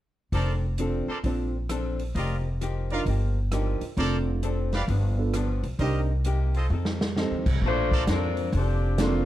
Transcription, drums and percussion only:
0.32 kick, open hi-hat
0.78 closed hi-hat
1.24 kick, open hi-hat
1.69 cross-stick, closed hi-hat
1.99 open hi-hat
2.15 kick, open hi-hat
2.61 closed hi-hat
2.90 open hi-hat
3.06 kick, open hi-hat
3.52 cross-stick, closed hi-hat
3.81 open hi-hat
3.97 kick, open hi-hat
4.43 closed hi-hat
4.73 snare, open hi-hat
4.88 kick, open hi-hat
5.34 cross-stick, closed hi-hat
5.63 open hi-hat
5.79 kick, open hi-hat
6.24 closed hi-hat
6.54 open hi-hat
6.85 snare
7.01 snare
7.16 snare
7.46 kick, crash
7.62 kick
7.92 kick
8.07 snare, closed hi-hat
8.37 open hi-hat
8.53 kick, open hi-hat
8.98 snare, closed hi-hat

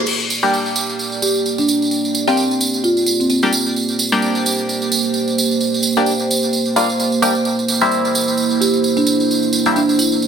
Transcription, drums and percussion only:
0.06 crash, tambourine
0.20 tambourine
0.30 tambourine
0.43 tambourine
0.53 tambourine
0.66 tambourine
0.76 tambourine
0.90 tambourine
0.99 tambourine
1.12 tambourine
1.22 tambourine
1.35 tambourine
1.46 tambourine
1.58 tambourine
1.68 tambourine
1.82 tambourine
1.91 tambourine
2.05 tambourine
2.15 tambourine
2.27 tambourine
2.37 tambourine
2.51 tambourine
2.61 tambourine
2.74 tambourine
2.84 tambourine
2.97 tambourine
3.06 tambourine
3.21 tambourine
3.30 tambourine
3.43 tambourine
3.53 tambourine
3.67 tambourine
3.76 tambourine
3.89 tambourine
3.99 tambourine
4.12 tambourine
4.22 tambourine
4.35 tambourine
4.46 tambourine
4.58 tambourine
4.69 tambourine
4.82 tambourine
4.92 tambourine
5.04 tambourine
5.14 tambourine
5.28 tambourine
5.38 tambourine
5.51 tambourine
5.61 tambourine
5.74 tambourine
5.83 tambourine
5.97 tambourine
6.06 tambourine
6.19 tambourine
6.31 tambourine
6.43 tambourine
6.53 tambourine
6.65 tambourine
6.76 tambourine
6.90 tambourine
6.99 tambourine
7.12 tambourine
7.22 tambourine
7.35 tambourine
7.45 tambourine
7.59 tambourine
7.68 tambourine
7.81 tambourine
7.91 tambourine
8.05 tambourine
8.15 tambourine
8.28 tambourine
8.37 tambourine
8.50 tambourine
8.61 tambourine
8.74 tambourine
8.84 tambourine
8.97 tambourine
9.07 tambourine
9.20 tambourine
9.31 tambourine
9.43 tambourine
9.53 tambourine
9.66 tambourine
9.76 tambourine
9.89 tambourine
9.99 tambourine
10.12 tambourine
10.22 tambourine

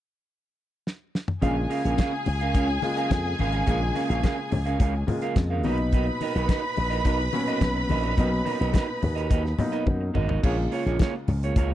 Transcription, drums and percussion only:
0.87 snare
1.15 snare
1.28 mid tom
1.42 kick, closed hi-hat
1.71 open hi-hat
1.85 closed hi-hat
1.98 kick, snare, closed hi-hat, high conga
2.26 open hi-hat, muted conga
2.41 closed hi-hat
2.54 kick, closed hi-hat
2.82 open hi-hat, muted conga
2.97 closed hi-hat
3.11 kick, snare, closed hi-hat, high conga
3.38 open hi-hat, high conga
3.52 closed hi-hat
3.67 kick, closed hi-hat
3.95 open hi-hat, muted conga
4.11 closed hi-hat
4.24 kick, snare, closed hi-hat, high conga
4.52 open hi-hat, muted conga, low conga
4.66 closed hi-hat
4.80 kick, closed hi-hat
5.08 open hi-hat, muted conga, low conga
5.21 closed hi-hat
5.36 kick, snare, closed hi-hat, high conga
5.63 open hi-hat, high conga
5.78 closed hi-hat
5.92 kick, closed hi-hat
6.21 open hi-hat, muted conga
6.36 closed hi-hat
6.49 kick, snare, closed hi-hat, high conga
6.76 open hi-hat, muted conga
6.92 closed hi-hat
7.05 kick, closed hi-hat
7.33 open hi-hat, muted conga
7.47 closed hi-hat
7.61 kick, snare, closed hi-hat, high conga
7.89 open hi-hat, high conga
8.03 closed hi-hat
8.17 kick, closed hi-hat
8.46 open hi-hat, muted conga
8.62 closed hi-hat
8.74 kick, snare, closed hi-hat, high conga
9.02 open hi-hat, muted conga, low conga
9.17 closed hi-hat
9.31 kick, closed hi-hat
9.46 snare
9.59 open hi-hat, muted conga, low conga
9.73 closed hi-hat
9.86 kick, high tom, high conga
10.15 mid tom, high conga
10.29 floor tom
10.43 kick, crash
10.72 open hi-hat
10.87 closed hi-hat
10.99 kick, snare, closed hi-hat, high conga
11.28 open hi-hat, muted conga, low conga
11.43 closed hi-hat
11.56 kick, closed hi-hat

